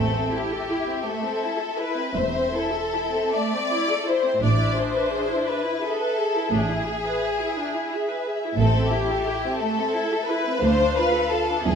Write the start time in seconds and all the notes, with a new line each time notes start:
Already playing: A1 A2 A3 C4 A4 E5
0.14 C4
0.31 E4 G4
0.53 A4
0.69 E4
0.89 C4
1.07 A3 A4
1.24 C4
1.43 E4
1.60 A4
1.78 E4 B4
1.97 C4
2.14 E1 E2 A3 C5
2.34 C4
2.53 E4 A4
2.73 A4
2.94 E4
3.14 C4
3.34 A3 D5
3.53 C4
3.72 E4
3.89 A4
4.06 E4 C5
4.25 C4
4.40 A1 A2 D4 D5 E5
4.59 E4
4.76 G#4 C5
4.94 B4
5.11 G#4
5.30 E4
5.46 D4 B4
5.65 E4
5.82 G#4 A4
5.99 B4
6.18 G#4
6.35 E4
6.51 A1 A2 D4 G#4
6.71 E4
6.87 G#4
7.06 B4
7.25 G#4
7.41 E4
7.60 D4
7.76 E4
7.94 G#4
8.10 B4
8.28 G#4
8.46 E4
8.57 A1 A2 C4 A4
8.61 A3
8.77 C4
8.92 E4 G4
9.10 A4
9.26 E4
9.44 C4
9.57 A4
9.61 A3
9.78 C4
9.95 E4
10.12 A4
10.27 E4 B4
10.45 C4
10.62 D2 A3 D4 C5 F5
10.81 D4
10.97 F4 B4
11.15 A4
11.31 F4 A4
11.51 D4
11.65 E1 E2 G#3 G#4 E5